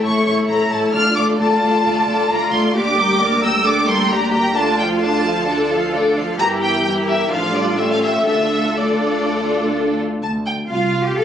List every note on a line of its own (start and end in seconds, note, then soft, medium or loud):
0.00 0.11 A1 soft
0.00 0.25 A3 soft
0.00 0.91 E4 soft
0.00 0.25 E4 soft
0.00 0.25 A4 soft
0.00 0.25 C#5 soft
0.00 0.25 C#6 medium
0.26 0.34 A1 soft
0.26 0.48 A3 soft
0.26 0.48 E4 soft
0.26 0.48 A4 soft
0.26 0.48 C#5 soft
0.26 0.34 C#6 medium
0.48 0.56 A1 soft
0.48 0.70 A3 soft
0.48 0.70 E4 soft
0.48 0.70 A4 soft
0.48 0.70 C#5 soft
0.48 0.71 A#5 medium
0.71 0.79 A1 soft
0.71 0.93 A3 soft
0.71 0.93 E4 soft
0.71 0.92 A4 soft
0.71 0.93 C#5 soft
0.71 0.94 A5 medium
0.93 1.01 D2 medium
0.93 1.15 A3 soft
0.93 1.38 D4 soft
0.93 1.15 F4 soft
0.93 1.15 A4 soft
0.93 1.15 D5 soft
0.93 1.16 F6 medium
1.16 1.24 D2 soft
1.16 1.38 A3 soft
1.16 1.38 F4 soft
1.16 1.38 A4 soft
1.16 1.38 D5 soft
1.16 1.24 D6 medium
1.38 1.47 D2 soft
1.38 1.60 A3 soft
1.38 2.27 F4 soft
1.38 1.60 F4 soft
1.38 1.61 A4 soft
1.38 1.61 D5 soft
1.38 2.27 A5 medium
1.61 1.70 D2 soft
1.61 1.83 A3 soft
1.61 1.83 F4 soft
1.61 1.83 A4 soft
1.61 1.83 D5 soft
1.84 1.93 D2 medium
1.84 2.05 A3 soft
1.84 2.06 F4 soft
1.84 2.06 A4 soft
1.84 2.05 D5 soft
2.06 2.15 D2 soft
2.06 2.28 A3 soft
2.06 2.28 F4 soft
2.06 2.28 A4 soft
2.06 2.28 D5 soft
2.29 2.37 D2 soft
2.29 2.50 A3 soft
2.29 2.74 F4 medium
2.29 2.50 F4 soft
2.29 2.51 A4 soft
2.29 2.51 D5 soft
2.29 2.52 A#5 medium
2.51 2.60 D2 medium
2.51 2.74 A3 soft
2.51 2.74 F4 soft
2.51 2.74 A4 soft
2.51 2.73 D5 soft
2.51 2.75 C6 medium
2.74 6.35 D2 medium
2.74 2.96 A#3 soft
2.74 2.96 D4 soft
2.74 2.95 G4 soft
2.74 3.20 G4 medium
2.74 2.95 D5 soft
2.74 3.42 D6 medium
2.97 3.20 G3 soft
2.97 3.19 A#3 soft
2.97 3.20 A#4 soft
2.97 3.20 G5 soft
3.19 3.41 A#3 soft
3.19 3.43 D4 soft
3.19 3.42 G4 soft
3.19 3.64 A#4 medium
3.19 3.42 D5 soft
3.41 3.65 G3 soft
3.41 3.64 A#3 soft
3.41 3.64 A#4 soft
3.41 3.65 G5 soft
3.41 3.65 E6 medium
3.64 3.86 A#3 soft
3.64 3.86 D4 soft
3.64 3.86 G4 soft
3.64 4.09 A4 medium
3.64 3.86 D5 soft
3.64 3.88 D6 medium
3.87 4.10 G3 soft
3.87 4.09 A#3 soft
3.87 4.10 A#4 soft
3.87 4.10 G5 soft
3.87 4.10 C6 medium
4.10 4.32 A#3 soft
4.10 4.33 D4 soft
4.10 4.55 G4 medium
4.10 4.33 G4 soft
4.10 4.33 D5 soft
4.10 4.32 A#5 medium
4.33 4.55 G3 soft
4.33 4.55 A#3 soft
4.33 4.55 A#4 soft
4.33 4.55 G5 soft
4.33 4.55 A#5 medium
4.55 4.76 D3 soft
4.55 4.76 D4 soft
4.55 4.76 F4 soft
4.55 5.45 F4 medium
4.55 4.76 D5 soft
4.55 4.78 A5 medium
4.78 5.01 F3 soft
4.78 5.01 F4 soft
4.78 5.01 A4 soft
4.78 5.01 F5 soft
4.78 4.86 G5 medium
5.01 5.24 D3 soft
5.01 5.24 D4 soft
5.01 5.24 F4 soft
5.01 5.24 D5 soft
5.01 5.69 A5 medium
5.24 5.47 F3 soft
5.24 5.47 F4 soft
5.24 5.47 A4 soft
5.24 5.47 F5 soft
5.47 5.68 D3 soft
5.47 5.68 D4 soft
5.47 5.68 F4 soft
5.47 6.39 A4 medium
5.47 5.68 D5 soft
5.70 5.93 F3 soft
5.70 5.93 F4 soft
5.70 5.93 A4 soft
5.70 5.93 F5 soft
5.93 6.16 D3 soft
5.93 6.16 D4 soft
5.93 6.16 F4 soft
5.93 6.16 D5 soft
6.16 6.39 F3 soft
6.16 6.39 F4 soft
6.16 6.39 A4 soft
6.16 6.39 F5 soft
6.39 7.27 G1 medium
6.39 6.82 E3 medium
6.39 6.81 E4 soft
6.39 7.29 G4 medium
6.39 6.82 G4 soft
6.39 6.82 A#4 soft
6.39 6.47 A#5 medium
6.62 6.83 G5 medium
6.85 7.30 E3 soft
6.85 7.30 E4 medium
6.85 7.30 G4 soft
6.85 7.30 A#4 soft
6.85 6.93 G5 medium
7.08 7.31 E5 medium
7.31 8.25 A1 medium
7.31 7.54 F3 soft
7.31 7.78 D4 soft
7.31 8.27 F4 medium
7.31 7.78 F4 soft
7.31 7.78 A4 soft
7.31 7.54 F5 medium
7.54 7.78 G3 soft
7.54 7.79 D5 medium
7.78 8.26 A3 soft
7.78 8.27 C#4 soft
7.78 8.28 G4 soft
7.78 8.27 A4 soft
7.78 7.90 E5 medium
7.91 8.03 F5 medium
8.03 8.25 E5 medium
8.27 9.99 D2 soft
8.27 8.76 A3 soft
8.27 8.76 D4 soft
8.27 8.77 F4 soft
8.27 9.96 A4 soft
8.27 8.76 A4 soft
8.27 8.76 E5 medium
8.76 10.00 A3 soft
8.76 10.00 D4 soft
8.76 10.01 F4 soft
8.76 10.00 A4 soft
8.76 9.98 D5 soft
10.23 10.66 D2 medium
10.23 10.31 A5 soft
10.46 10.54 G5 soft
10.70 11.15 C2 soft
10.70 11.02 F4 medium
10.70 11.15 F5 soft
11.05 11.16 G4 soft
11.05 11.16 G4 medium
11.16 11.24 A#1 soft
11.16 11.24 A4 medium
11.16 11.24 F5 medium
11.16 11.24 F5 soft